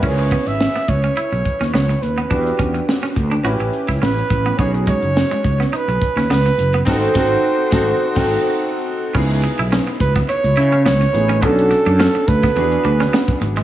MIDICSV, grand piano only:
0, 0, Header, 1, 2, 480
1, 0, Start_track
1, 0, Key_signature, 4, "minor"
1, 0, Tempo, 569801
1, 26, Time_signature, 4, 2, 24, 8
1, 11484, End_track
2, 0, Start_track
2, 0, Title_t, "Grand piano"
2, 0, Program_c, 0, 0
2, 0, Control_c, 0, 64, 127
2, 0, Note_on_c, 0, 76, 57
2, 12, Note_on_c, 0, 61, 63
2, 19, Note_on_c, 0, 64, 51
2, 26, Note_on_c, 0, 68, 58
2, 34, Note_on_c, 0, 70, 52
2, 38, Control_c, 0, 64, 0
2, 87, Note_on_c, 0, 71, 66
2, 89, Note_off_c, 0, 70, 0
2, 143, Note_off_c, 0, 76, 0
2, 170, Control_c, 0, 64, 127
2, 1904, Note_off_c, 0, 61, 0
2, 1908, Note_off_c, 0, 64, 0
2, 1911, Note_off_c, 0, 68, 0
2, 1934, Note_on_c, 0, 62, 58
2, 1938, Note_on_c, 0, 66, 57
2, 1940, Note_off_c, 0, 71, 0
2, 1946, Note_on_c, 0, 67, 60
2, 1953, Note_on_c, 0, 71, 68
2, 1955, Control_c, 0, 64, 0
2, 2080, Control_c, 0, 64, 127
2, 2880, Note_off_c, 0, 62, 0
2, 2882, Note_off_c, 0, 66, 0
2, 2886, Note_off_c, 0, 67, 0
2, 2890, Note_off_c, 0, 71, 0
2, 2892, Note_on_c, 0, 61, 69
2, 2899, Note_on_c, 0, 64, 67
2, 2907, Note_on_c, 0, 67, 62
2, 2913, Note_on_c, 0, 71, 72
2, 2915, Control_c, 0, 64, 0
2, 3046, Control_c, 0, 64, 127
2, 3840, Note_off_c, 0, 61, 0
2, 3843, Note_off_c, 0, 64, 0
2, 3847, Note_off_c, 0, 67, 0
2, 3850, Note_off_c, 0, 71, 0
2, 3852, Note_on_c, 0, 61, 63
2, 3859, Note_on_c, 0, 63, 59
2, 3869, Note_on_c, 0, 66, 55
2, 3875, Note_on_c, 0, 68, 71
2, 3877, Control_c, 0, 64, 0
2, 4028, Control_c, 0, 64, 127
2, 5746, Note_off_c, 0, 61, 0
2, 5749, Note_off_c, 0, 63, 0
2, 5754, Note_off_c, 0, 66, 0
2, 5757, Note_off_c, 0, 68, 0
2, 5772, Note_on_c, 0, 60, 95
2, 5780, Note_on_c, 0, 63, 101
2, 5786, Note_on_c, 0, 66, 96
2, 5794, Note_on_c, 0, 69, 94
2, 5798, Control_c, 0, 64, 0
2, 5934, Control_c, 0, 64, 127
2, 5945, Note_off_c, 0, 60, 0
2, 5949, Note_off_c, 0, 63, 0
2, 5952, Note_off_c, 0, 66, 0
2, 5957, Note_off_c, 0, 69, 0
2, 6012, Note_on_c, 0, 60, 94
2, 6019, Note_on_c, 0, 63, 97
2, 6025, Note_on_c, 0, 66, 102
2, 6032, Note_on_c, 0, 69, 92
2, 6185, Note_off_c, 0, 60, 0
2, 6189, Note_off_c, 0, 63, 0
2, 6192, Note_off_c, 0, 66, 0
2, 6196, Note_off_c, 0, 69, 0
2, 6492, Note_on_c, 0, 60, 95
2, 6498, Note_on_c, 0, 63, 97
2, 6507, Note_on_c, 0, 66, 104
2, 6513, Note_on_c, 0, 69, 98
2, 6665, Note_off_c, 0, 60, 0
2, 6668, Note_off_c, 0, 63, 0
2, 6673, Note_off_c, 0, 66, 0
2, 6677, Note_off_c, 0, 69, 0
2, 6866, Note_on_c, 0, 60, 96
2, 6874, Note_on_c, 0, 63, 94
2, 6881, Note_on_c, 0, 66, 98
2, 6887, Note_on_c, 0, 69, 90
2, 7030, Note_off_c, 0, 60, 0
2, 7035, Note_off_c, 0, 63, 0
2, 7039, Note_off_c, 0, 66, 0
2, 7042, Note_off_c, 0, 69, 0
2, 7697, Note_on_c, 0, 59, 70
2, 7705, Note_on_c, 0, 63, 71
2, 7710, Note_on_c, 0, 64, 72
2, 7716, Control_c, 0, 64, 0
2, 7716, Note_on_c, 0, 68, 85
2, 7884, Control_c, 0, 64, 127
2, 9347, Note_off_c, 0, 59, 0
2, 9350, Note_off_c, 0, 63, 0
2, 9353, Note_off_c, 0, 64, 0
2, 9356, Note_off_c, 0, 68, 0
2, 9375, Note_on_c, 0, 59, 51
2, 9378, Note_on_c, 0, 63, 51
2, 9381, Note_on_c, 0, 64, 47
2, 9386, Note_on_c, 0, 68, 57
2, 9617, Note_on_c, 0, 61, 64
2, 9619, Note_off_c, 0, 59, 0
2, 9621, Note_off_c, 0, 63, 0
2, 9622, Note_off_c, 0, 64, 0
2, 9622, Note_on_c, 0, 62, 62
2, 9625, Note_off_c, 0, 68, 0
2, 9628, Note_on_c, 0, 66, 63
2, 9635, Control_c, 0, 64, 0
2, 9636, Note_on_c, 0, 69, 72
2, 9784, Control_c, 0, 64, 127
2, 10560, Note_off_c, 0, 61, 0
2, 10563, Note_off_c, 0, 62, 0
2, 10565, Note_off_c, 0, 66, 0
2, 10569, Note_off_c, 0, 69, 0
2, 10575, Note_on_c, 0, 59, 68
2, 10581, Note_on_c, 0, 62, 63
2, 10587, Note_on_c, 0, 66, 57
2, 10593, Control_c, 0, 64, 0
2, 10593, Note_on_c, 0, 68, 72
2, 10742, Control_c, 0, 64, 127
2, 11484, Note_off_c, 0, 59, 0
2, 11484, Note_off_c, 0, 62, 0
2, 11484, Note_off_c, 0, 66, 0
2, 11484, Note_off_c, 0, 68, 0
2, 11484, End_track
0, 0, End_of_file